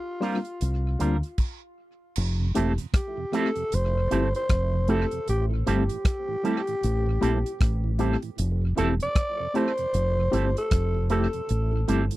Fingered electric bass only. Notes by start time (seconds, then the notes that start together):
0.62 C2
1.01 D2
2.17 F1
2.57 E1
3.73 F1
4.12 G1
4.50 F1
5.29 A1
5.68 G1
6.84 A1
7.23 A#1
7.61 A1
8.39 F1
8.78 E1
9.94 F1
10.33 G1
10.72 F1
11.50 A1
11.89 G1